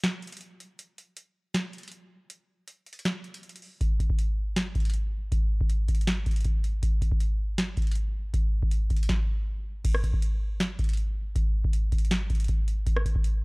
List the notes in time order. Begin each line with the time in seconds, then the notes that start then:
0.04 snare, closed hi-hat
0.22 closed hi-hat
0.27 closed hi-hat
0.32 closed hi-hat
0.37 closed hi-hat
0.41 closed hi-hat
0.60 closed hi-hat
0.79 closed hi-hat
0.98 closed hi-hat
1.17 closed hi-hat
1.54 snare, closed hi-hat
1.73 closed hi-hat
1.78 closed hi-hat
1.83 closed hi-hat
1.88 closed hi-hat
1.92 closed hi-hat
2.30 closed hi-hat
2.68 closed hi-hat
2.87 closed hi-hat
2.93 closed hi-hat
2.99 closed hi-hat
3.05 snare, closed hi-hat
3.24 closed hi-hat
3.34 closed hi-hat
3.43 closed hi-hat
3.49 closed hi-hat
3.56 closed hi-hat
3.62 open hi-hat
3.81 kick, closed hi-hat
4.00 kick, closed hi-hat
4.10 kick
4.19 closed hi-hat
4.56 snare, closed hi-hat
4.75 kick, closed hi-hat
4.80 closed hi-hat
4.85 closed hi-hat
4.90 closed hi-hat
4.94 closed hi-hat
5.32 kick, closed hi-hat
5.61 kick
5.70 closed hi-hat
5.88 kick, closed hi-hat
5.95 closed hi-hat
6.01 closed hi-hat
6.07 snare, closed hi-hat
6.26 kick, closed hi-hat
6.31 closed hi-hat
6.36 closed hi-hat
6.41 closed hi-hat
6.45 kick, closed hi-hat
6.64 closed hi-hat
6.83 kick, closed hi-hat
7.02 kick, closed hi-hat
7.12 kick
7.20 closed hi-hat
7.58 snare, closed hi-hat
7.77 kick, closed hi-hat
7.82 closed hi-hat
7.87 closed hi-hat
7.91 closed hi-hat
7.95 closed hi-hat
8.34 kick, closed hi-hat
8.63 kick
8.71 closed hi-hat
8.90 kick, closed hi-hat
8.97 closed hi-hat
9.03 closed hi-hat
9.09 kick, snare
9.85 kick, closed hi-hat, crash
9.95 cross-stick
10.03 kick, closed hi-hat
10.13 kick
10.22 closed hi-hat
10.60 snare, closed hi-hat
10.79 kick, closed hi-hat
10.84 closed hi-hat
10.89 closed hi-hat
10.93 closed hi-hat
10.97 closed hi-hat
11.36 kick, closed hi-hat
11.64 kick
11.73 closed hi-hat
11.92 kick, closed hi-hat
11.98 closed hi-hat
12.05 closed hi-hat
12.11 snare, closed hi-hat
12.30 kick, closed hi-hat
12.35 closed hi-hat
12.40 closed hi-hat
12.44 closed hi-hat
12.48 kick, closed hi-hat
12.68 closed hi-hat
12.87 kick, closed hi-hat
12.97 cross-stick
13.05 kick, closed hi-hat
13.15 kick
13.24 closed hi-hat